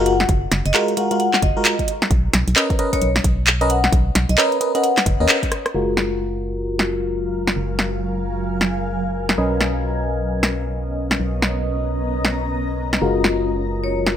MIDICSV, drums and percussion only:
0, 0, Header, 1, 2, 480
1, 0, Start_track
1, 0, Key_signature, 6, "major"
1, 0, Tempo, 454545
1, 305, Time_signature, 4, 2, 24, 8
1, 14962, End_track
2, 0, Start_track
2, 0, Title_t, "Drums"
2, 63, Note_on_c, 9, 42, 81
2, 169, Note_off_c, 9, 42, 0
2, 212, Note_on_c, 9, 38, 59
2, 303, Note_on_c, 9, 42, 65
2, 304, Note_on_c, 9, 36, 108
2, 318, Note_off_c, 9, 38, 0
2, 409, Note_off_c, 9, 42, 0
2, 410, Note_off_c, 9, 36, 0
2, 544, Note_on_c, 9, 38, 64
2, 544, Note_on_c, 9, 42, 101
2, 650, Note_off_c, 9, 38, 0
2, 650, Note_off_c, 9, 42, 0
2, 692, Note_on_c, 9, 42, 63
2, 784, Note_on_c, 9, 39, 108
2, 798, Note_off_c, 9, 42, 0
2, 889, Note_off_c, 9, 39, 0
2, 933, Note_on_c, 9, 42, 36
2, 1025, Note_off_c, 9, 42, 0
2, 1025, Note_on_c, 9, 42, 92
2, 1130, Note_off_c, 9, 42, 0
2, 1173, Note_on_c, 9, 42, 62
2, 1264, Note_off_c, 9, 42, 0
2, 1264, Note_on_c, 9, 42, 61
2, 1370, Note_off_c, 9, 42, 0
2, 1413, Note_on_c, 9, 38, 64
2, 1413, Note_on_c, 9, 39, 58
2, 1504, Note_on_c, 9, 36, 99
2, 1504, Note_on_c, 9, 42, 98
2, 1518, Note_off_c, 9, 38, 0
2, 1518, Note_off_c, 9, 39, 0
2, 1610, Note_off_c, 9, 36, 0
2, 1610, Note_off_c, 9, 42, 0
2, 1745, Note_on_c, 9, 39, 107
2, 1745, Note_on_c, 9, 42, 68
2, 1851, Note_off_c, 9, 39, 0
2, 1851, Note_off_c, 9, 42, 0
2, 1892, Note_on_c, 9, 36, 58
2, 1893, Note_on_c, 9, 42, 49
2, 1984, Note_off_c, 9, 42, 0
2, 1984, Note_on_c, 9, 42, 86
2, 1998, Note_off_c, 9, 36, 0
2, 2090, Note_off_c, 9, 42, 0
2, 2133, Note_on_c, 9, 38, 62
2, 2224, Note_on_c, 9, 36, 111
2, 2225, Note_on_c, 9, 42, 63
2, 2239, Note_off_c, 9, 38, 0
2, 2330, Note_off_c, 9, 36, 0
2, 2330, Note_off_c, 9, 42, 0
2, 2465, Note_on_c, 9, 38, 66
2, 2465, Note_on_c, 9, 42, 109
2, 2571, Note_off_c, 9, 38, 0
2, 2571, Note_off_c, 9, 42, 0
2, 2614, Note_on_c, 9, 42, 64
2, 2705, Note_on_c, 9, 39, 114
2, 2720, Note_off_c, 9, 42, 0
2, 2811, Note_off_c, 9, 39, 0
2, 2853, Note_on_c, 9, 36, 98
2, 2853, Note_on_c, 9, 42, 39
2, 2945, Note_off_c, 9, 42, 0
2, 2945, Note_on_c, 9, 42, 91
2, 2958, Note_off_c, 9, 36, 0
2, 3050, Note_off_c, 9, 42, 0
2, 3093, Note_on_c, 9, 36, 53
2, 3094, Note_on_c, 9, 42, 64
2, 3184, Note_off_c, 9, 42, 0
2, 3184, Note_on_c, 9, 42, 62
2, 3198, Note_off_c, 9, 36, 0
2, 3290, Note_off_c, 9, 42, 0
2, 3334, Note_on_c, 9, 38, 66
2, 3425, Note_on_c, 9, 36, 103
2, 3425, Note_on_c, 9, 42, 102
2, 3439, Note_off_c, 9, 38, 0
2, 3530, Note_off_c, 9, 36, 0
2, 3531, Note_off_c, 9, 42, 0
2, 3665, Note_on_c, 9, 39, 110
2, 3665, Note_on_c, 9, 42, 64
2, 3771, Note_off_c, 9, 39, 0
2, 3771, Note_off_c, 9, 42, 0
2, 3814, Note_on_c, 9, 42, 52
2, 3905, Note_off_c, 9, 42, 0
2, 3905, Note_on_c, 9, 42, 86
2, 4011, Note_off_c, 9, 42, 0
2, 4054, Note_on_c, 9, 38, 61
2, 4144, Note_on_c, 9, 36, 113
2, 4145, Note_on_c, 9, 42, 64
2, 4159, Note_off_c, 9, 38, 0
2, 4250, Note_off_c, 9, 36, 0
2, 4251, Note_off_c, 9, 42, 0
2, 4385, Note_on_c, 9, 38, 69
2, 4385, Note_on_c, 9, 42, 108
2, 4491, Note_off_c, 9, 38, 0
2, 4491, Note_off_c, 9, 42, 0
2, 4534, Note_on_c, 9, 42, 65
2, 4626, Note_on_c, 9, 39, 110
2, 4640, Note_off_c, 9, 42, 0
2, 4731, Note_off_c, 9, 39, 0
2, 4774, Note_on_c, 9, 42, 37
2, 4867, Note_off_c, 9, 42, 0
2, 4867, Note_on_c, 9, 42, 93
2, 4972, Note_off_c, 9, 42, 0
2, 5015, Note_on_c, 9, 42, 65
2, 5106, Note_off_c, 9, 42, 0
2, 5106, Note_on_c, 9, 42, 65
2, 5212, Note_off_c, 9, 42, 0
2, 5254, Note_on_c, 9, 38, 69
2, 5254, Note_on_c, 9, 39, 58
2, 5345, Note_on_c, 9, 36, 97
2, 5346, Note_on_c, 9, 42, 104
2, 5360, Note_off_c, 9, 38, 0
2, 5360, Note_off_c, 9, 39, 0
2, 5450, Note_off_c, 9, 36, 0
2, 5451, Note_off_c, 9, 42, 0
2, 5586, Note_on_c, 9, 39, 113
2, 5586, Note_on_c, 9, 42, 65
2, 5691, Note_off_c, 9, 39, 0
2, 5691, Note_off_c, 9, 42, 0
2, 5733, Note_on_c, 9, 36, 58
2, 5734, Note_on_c, 9, 42, 51
2, 5825, Note_off_c, 9, 42, 0
2, 5825, Note_on_c, 9, 37, 61
2, 5825, Note_on_c, 9, 42, 93
2, 5839, Note_off_c, 9, 36, 0
2, 5931, Note_off_c, 9, 37, 0
2, 5931, Note_off_c, 9, 42, 0
2, 5974, Note_on_c, 9, 37, 70
2, 5974, Note_on_c, 9, 42, 37
2, 6080, Note_off_c, 9, 37, 0
2, 6080, Note_off_c, 9, 42, 0
2, 6305, Note_on_c, 9, 38, 62
2, 6411, Note_off_c, 9, 38, 0
2, 7173, Note_on_c, 9, 38, 61
2, 7278, Note_off_c, 9, 38, 0
2, 7893, Note_on_c, 9, 38, 59
2, 7999, Note_off_c, 9, 38, 0
2, 8224, Note_on_c, 9, 38, 61
2, 8329, Note_off_c, 9, 38, 0
2, 9092, Note_on_c, 9, 38, 61
2, 9197, Note_off_c, 9, 38, 0
2, 9812, Note_on_c, 9, 38, 61
2, 9917, Note_off_c, 9, 38, 0
2, 10144, Note_on_c, 9, 38, 61
2, 10249, Note_off_c, 9, 38, 0
2, 11014, Note_on_c, 9, 38, 65
2, 11119, Note_off_c, 9, 38, 0
2, 11732, Note_on_c, 9, 38, 63
2, 11837, Note_off_c, 9, 38, 0
2, 12063, Note_on_c, 9, 38, 62
2, 12169, Note_off_c, 9, 38, 0
2, 12932, Note_on_c, 9, 38, 60
2, 13037, Note_off_c, 9, 38, 0
2, 13653, Note_on_c, 9, 38, 59
2, 13759, Note_off_c, 9, 38, 0
2, 13983, Note_on_c, 9, 38, 62
2, 14089, Note_off_c, 9, 38, 0
2, 14853, Note_on_c, 9, 38, 58
2, 14958, Note_off_c, 9, 38, 0
2, 14962, End_track
0, 0, End_of_file